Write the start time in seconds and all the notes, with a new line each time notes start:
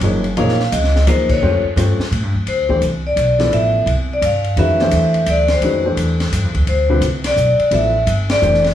0.01 F#1 F3 A#3 D#4 G#4 C#5, ride
0.24 ride
0.37 A#1 F3 A#3 D#4 G#4 C#5 F5, ride
0.49 snare
0.60 snare
0.72 C#2 D#5, hi-hat pedal, ride
0.84 snare
0.96 snare
1.07 D#2 F3 A#3 D#4 G#4 C5 D#5, hi-hat pedal, ride
1.29 C#5, muted upright bass stroke, kick, crash
1.42 F2 A3 C#4 F4 G4 C5
1.64 muted upright bass stroke
1.76 G2 A3 C#4 F4 G4 C5, hi-hat pedal, ride
1.99 muted upright bass stroke, snare
2.11 A2, ride
2.23 G2
2.35 F2
2.46 D2 C5, ride
2.69 E3 A3 D4 G4 C5, kick
2.82 C2, hi-hat pedal, ride
3.07 D5
3.16 B1, hi-hat pedal, ride
3.39 F3 B3 E4 A4 D5, snare, ride
3.51 A1 E5, ride
3.86 C2, ride
4.13 D5
4.21 G2, hi-hat pedal, ride
4.26 F5
4.44 ride
4.56 F2 D#3 G#3 C#4 F#4 B4 E5, ride
4.79 E3 A3 D4 G4 C5, snare
4.91 E2, hi-hat pedal, ride
5.14 ride
5.26 D2 D5, hi-hat pedal, ride
5.48 C5, snare, ride
5.61 F2 D#3 G#3 C#4 F#4 B4, ride
5.85 E3 A3 D4 G4 C5
5.97 E2, hi-hat pedal, ride
6.20 snare, ride
6.32 G2, hi-hat pedal, ride
6.44 F2
6.55 D2, kick, ride
6.67 D2 C5, ride
6.89 D3 G3 C4 F4 B4
7.01 C2, hi-hat pedal, ride
7.24 D5, snare, ride
7.36 B1, hi-hat pedal
7.59 muted upright bass stroke, ride
7.71 A1 F3 B3 E4 A4 D5 E5, ride
8.06 G1, hi-hat pedal, ride
8.30 D5, snare, ride
8.42 F1 E3 A3 D4 G4 C5, hi-hat pedal
8.54 snare
8.64 snare, ride